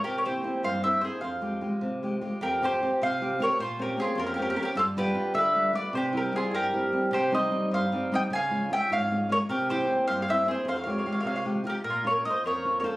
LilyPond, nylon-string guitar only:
\new Staff \with { instrumentName = "Nylon-string guitar" } { \time 6/8 \key f \minor \tempo 4. = 102 c8 <bes c' e'>8 <bes c' e'>8 g,8 <bes c' e'>8 <bes c' e'>8 | f,8 <aes f' g'>8 <aes f' g'>8 c8 <aes f' g'>8 <aes f' g'>8 | f,8 <c' f' g'>8 <c' f' g'>8 c8 <c' f' g'>8 <c' f' g'>8 | bes,8 <bes c' des'>8 <bes c' des'>8 f,8 <bes c' des'>8 <bes c' des'>8 |
g,8 <g b f'>8 <g b f'>8 d8 <g b f'>8 <g b f'>8 | c8 <g c' e'>8 <g c' e'>8 g,8 <g c' e'>8 <g c' e'>8 | c8 <g c' ees'>8 <g c' ees'>8 g,8 <g c' ees'>8 <g c' ees'>8 | des8 <aes des' f'>8 <aes des' f'>8 aes,8 <aes des' f'>8 <aes des' f'>8 |
c8 <bes c' e'>8 <bes c' e'>8 g,8 <bes c' e'>8 <bes c' e'>8 | f,8 <aes f' g'>8 <aes f' g'>8 c8 <aes f' g'>8 <aes f' g'>8 | \key bes \minor bes,8 <bes des' f'>8 <bes des' f'>8 f,8 <bes des' f'>8 <bes des' f'>8 | }